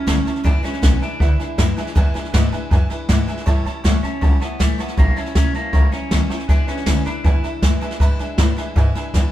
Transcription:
Already playing: C#4
0.06 D2 A2 E3 G3 C#4 E4 C#5 E5 A5, kick, snare, hi-hat pedal
0.25 G3 C#4 E4 C#5 E5 A5, snare
0.36 snare
0.44 E2 B2 E3 G#3 D4 E4 B4 E5 G#5, kick, snare
0.63 E3 G#3 C#4 D4 E4 B4 E5 G#5, muted upright bass stroke, snare
0.73 snare
0.81 B1 E2 B2 E3 G#3 D4 E4 B4 E5 F#5, kick, snare, hi-hat pedal
1.00 G#3 D4 E4 B4 E5 G#5, muted upright bass stroke, snare
1.04 E3
1.19 D2 E3 G#3 D4 B4 E5 F#5, kick, snare
1.23 E4
1.38 G#3 D4 E4 B4 E5 G#5, muted upright bass stroke, snare
1.42 E3
1.57 E2 F#2 B2 E3 G#3 D4 E4 B4 E5 B5, kick, snare, hi-hat pedal
1.76 E3 G#3 D4 E4 B4 E5 G#5, muted upright bass stroke, snare
1.87 snare
1.95 E2 B2 E3 G#3 D4 E4 B4 E5 G#5, kick, snare
2.14 E3 G#3 D4 E4 B4 E5 G#5, muted upright bass stroke, snare
2.25 snare
2.32 E2 G#2 B2 E3 G#3 D4 E4 B4 E5 F#5, kick, snare, hi-hat pedal
2.51 G#3 D4 E4 B4 E5 G#5, muted upright bass stroke, snare
2.55 E3
2.70 F#2 E3 G#3 D4 B4 E5 G#5, kick, snare
2.74 E4
2.89 E3 G#3 D4 E4 B4 E5 G#5, muted upright bass stroke, snare
3.08 E2 G#2 B2 E3 G#3 D4 E4 B4 E5 F#5, kick, snare, hi-hat pedal
3.27 E3 G#3 D4 E4 B4 E5 G#5, muted upright bass stroke, snare
3.37 snare
3.46 A2 E3 G3 C#4 E4 C#5 E5 A5, kick, snare
3.64 C#4 E4 C#5 E5 A5, muted upright bass stroke, snare
3.68 G3
3.84 E2 A2 E3 G3 C#4 E4 C#5 E5 F#5, kick, snare, hi-hat pedal
4.02 G3 C#4 E4 C#5 E5 A5, muted upright bass stroke, snare
4.21 C#2 E3 G3 C#4 E4 C#5 E5 A5, kick, snare
4.40 G3 B3 C#4 E4 C#5 E5 A5, muted upright bass stroke, snare
4.59 A1 A2 E3 G3 A3 C#4 E4 C#5 E5 F#5, kick, snare, hi-hat pedal
4.78 G3 B3 C#4 E4 C#5 E5 A5, muted upright bass stroke, snare
4.88 snare
4.97 A#1 A#2 E3 G3 A#3 C#4 E4 C#5 E5 A#5, kick, snare
5.16 G3 C#4 E4 C#5 E5 A5, muted upright bass stroke, snare
5.26 snare
5.35 C2 A#2 E3 G3 C#4 E4 C#5 E5 A#5, kick, snare, hi-hat pedal
5.53 A#3 C#4 E4 C#5 E5 A5, muted upright bass stroke, snare
5.57 G3
5.73 C#2 E3 G3 C#4 E4 C#5 E5 A#5, kick, snare
5.91 G3 C#4 E4 C#5 E5 A#5, muted upright bass stroke, snare
6.10 D#2 A#2 E3 G3 C#4 E4 C#5 E5 A#5, kick, snare, hi-hat pedal
6.28 C#4 E4 C#5 E5 G5, muted upright bass stroke, snare
6.33 G3
6.39 snare
6.48 E2 B2 E3 G#3 D4 E4 B4 E5 G#5, kick, snare
6.66 G#3 C#4 D4 E4 B4 E5 G#5, muted upright bass stroke, snare
6.71 E3
6.77 snare
6.86 D2 E2 B2 E3 G#3 D4 E4 B4 E5 G#5, kick, snare, hi-hat pedal
7.05 E3 G#3 D4 E4 B4 E5 B5, muted upright bass stroke, snare
7.24 E2 E3 G#3 D4 B4 E5 G#5, kick, snare
7.28 E4
7.42 G#3 D4 E4 B4 E5 B5, muted upright bass stroke, snare
7.47 E3
7.62 E2 F#2 B2 E3 G#3 D4 E4 B4 E5 G#5, kick, snare, hi-hat pedal
7.81 E3 G#3 D4 E4 B4 E5 G#5, muted upright bass stroke, snare
7.91 snare
8.00 E2 G#2 B2 E3 G#3 D4 E4 B4 E5 B5, kick, snare
8.19 E3 G#3 D4 E4 B4 E5 G#5, muted upright bass stroke, snare
8.38 E2 A2 B2 E3 G#3 D4 E4 B4 E5 B5, kick, snare, hi-hat pedal
8.56 E3 G#3 D4 E4 B4 E5 G#5, muted upright bass stroke, snare
8.75 G#2 E3 G#3 D4 E4 B4 E5 G#5, kick, snare
8.95 E3 G#3 D4 E4 B4 E5 G#5, muted upright bass stroke, snare
9.14 E2 B2 E3 G#3 D4 E4 B4 E5 G#5, kick, snare, hi-hat pedal

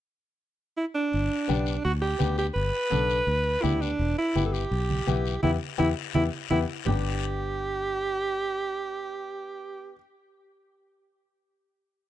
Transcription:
0.77 E4
0.95 D4
1.13 G1, long guiro
1.48 B1 B3 D4 G4, high conga, short guiro
1.66 short guiro
1.84 D2 F#4, long guiro
2.02 G4
2.19 D2 B3 D4 G4, high conga, short guiro
2.38 G4, short guiro
2.54 G1 B4, long guiro
2.90 B1 B3 D4 A4, high conga, short guiro
3.10 short guiro
3.27 D2, long guiro
3.62 D2 B3 D4 E4 G4, high conga, short guiro
3.82 D4, short guiro
3.99 E1, long guiro
4.18 E4
4.35 G1 B3 E4 G4, high conga, short guiro
4.46 A4
4.53 G4, short guiro
4.71 B1, long guiro
4.90 high conga
5.07 B1 B3 E4 G4, high conga, short guiro
5.26 short guiro
5.43 E2 B3 E4 G4, high conga, long guiro
5.78 E2 B3 E4 G4, high conga, long guiro
6.15 E2 B3 E4 G4, high conga
6.50 E2 B3 E4 G4, high conga, long guiro
6.85 G1 B3 D4 G4, low conga, long guiro

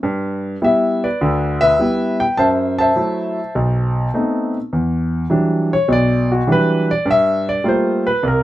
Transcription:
0.03 G2
0.62 G3 B3 E4 E5
1.04 B4 D5
1.21 D2 D3
1.61 B4 E5
1.79 G3 B3 E4
2.20 G5
2.37 F#2 C5 E5 A5
2.79 C5 E5 A5
2.96 F#3 A3 E4
3.55 B1
4.14 A3 B3 C4 D#4
4.73 E2
5.30 E3 F#3 G3 D4
5.73 C#5
5.88 B1 B2
5.93 D5
6.32 F#4
6.47 E3 F#3 G3 D4
6.52 B4
6.91 D5
7.06 G2
7.11 E5
7.49 D5
7.64 G3 A3 A#3 F4
7.69 C5
8.07 B4
8.23 C2
8.28 A#4

